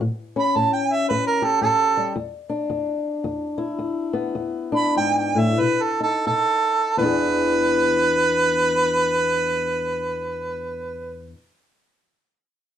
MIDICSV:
0, 0, Header, 1, 3, 480
1, 0, Start_track
1, 0, Tempo, 533333
1, 28, Time_signature, 4, 2, 24, 8
1, 2908, Tempo, 564440
1, 3868, Tempo, 612245
1, 4828, Tempo, 685714
1, 5788, Tempo, 734394
1, 9592, End_track
2, 0, Start_track
2, 0, Title_t, "Harmonica"
2, 0, Program_c, 0, 22
2, 355, Note_on_c, 0, 83, 93
2, 504, Note_on_c, 0, 81, 85
2, 517, Note_off_c, 0, 83, 0
2, 651, Note_off_c, 0, 81, 0
2, 656, Note_on_c, 0, 79, 81
2, 828, Note_on_c, 0, 76, 92
2, 842, Note_off_c, 0, 79, 0
2, 974, Note_off_c, 0, 76, 0
2, 980, Note_on_c, 0, 71, 86
2, 1137, Note_off_c, 0, 71, 0
2, 1144, Note_on_c, 0, 70, 92
2, 1292, Note_on_c, 0, 69, 94
2, 1306, Note_off_c, 0, 70, 0
2, 1452, Note_off_c, 0, 69, 0
2, 1457, Note_on_c, 0, 69, 105
2, 1924, Note_off_c, 0, 69, 0
2, 4180, Note_on_c, 0, 83, 98
2, 4333, Note_off_c, 0, 83, 0
2, 4348, Note_on_c, 0, 79, 102
2, 4499, Note_off_c, 0, 79, 0
2, 4510, Note_on_c, 0, 79, 85
2, 4675, Note_on_c, 0, 76, 97
2, 4687, Note_off_c, 0, 79, 0
2, 4842, Note_on_c, 0, 71, 96
2, 4852, Note_off_c, 0, 76, 0
2, 4992, Note_on_c, 0, 69, 97
2, 5003, Note_off_c, 0, 71, 0
2, 5137, Note_off_c, 0, 69, 0
2, 5141, Note_on_c, 0, 69, 99
2, 5291, Note_off_c, 0, 69, 0
2, 5307, Note_on_c, 0, 69, 112
2, 5781, Note_off_c, 0, 69, 0
2, 5805, Note_on_c, 0, 71, 111
2, 8628, Note_off_c, 0, 71, 0
2, 9592, End_track
3, 0, Start_track
3, 0, Title_t, "Steel-string acoustic guitar"
3, 0, Program_c, 1, 25
3, 7, Note_on_c, 1, 45, 87
3, 324, Note_on_c, 1, 61, 67
3, 459, Note_off_c, 1, 45, 0
3, 500, Note_on_c, 1, 45, 67
3, 945, Note_off_c, 1, 45, 0
3, 995, Note_on_c, 1, 45, 79
3, 1279, Note_on_c, 1, 67, 67
3, 1431, Note_off_c, 1, 45, 0
3, 1453, Note_on_c, 1, 45, 77
3, 1774, Note_on_c, 1, 55, 62
3, 1900, Note_off_c, 1, 45, 0
3, 1918, Note_off_c, 1, 67, 0
3, 1919, Note_off_c, 1, 61, 0
3, 1941, Note_on_c, 1, 40, 85
3, 1949, Note_off_c, 1, 55, 0
3, 2245, Note_on_c, 1, 62, 63
3, 2384, Note_off_c, 1, 40, 0
3, 2427, Note_on_c, 1, 40, 73
3, 2874, Note_off_c, 1, 40, 0
3, 2916, Note_on_c, 1, 40, 75
3, 3203, Note_on_c, 1, 64, 69
3, 3348, Note_off_c, 1, 40, 0
3, 3381, Note_on_c, 1, 40, 75
3, 3675, Note_on_c, 1, 59, 60
3, 3831, Note_off_c, 1, 40, 0
3, 3850, Note_off_c, 1, 62, 0
3, 3859, Note_on_c, 1, 40, 78
3, 4151, Note_on_c, 1, 62, 64
3, 4296, Note_off_c, 1, 40, 0
3, 4342, Note_on_c, 1, 44, 65
3, 4640, Note_off_c, 1, 44, 0
3, 4643, Note_on_c, 1, 45, 72
3, 4667, Note_off_c, 1, 59, 0
3, 4803, Note_off_c, 1, 62, 0
3, 4831, Note_off_c, 1, 45, 0
3, 4841, Note_on_c, 1, 47, 70
3, 5122, Note_on_c, 1, 63, 59
3, 5263, Note_off_c, 1, 47, 0
3, 5305, Note_on_c, 1, 47, 81
3, 5756, Note_off_c, 1, 47, 0
3, 5770, Note_off_c, 1, 63, 0
3, 5790, Note_off_c, 1, 64, 0
3, 5799, Note_on_c, 1, 40, 74
3, 5812, Note_on_c, 1, 52, 70
3, 5822, Note_on_c, 1, 59, 62
3, 5834, Note_on_c, 1, 62, 58
3, 5850, Note_on_c, 1, 68, 55
3, 8648, Note_off_c, 1, 40, 0
3, 8662, Note_off_c, 1, 52, 0
3, 8672, Note_off_c, 1, 59, 0
3, 8683, Note_off_c, 1, 62, 0
3, 8700, Note_off_c, 1, 68, 0
3, 9592, End_track
0, 0, End_of_file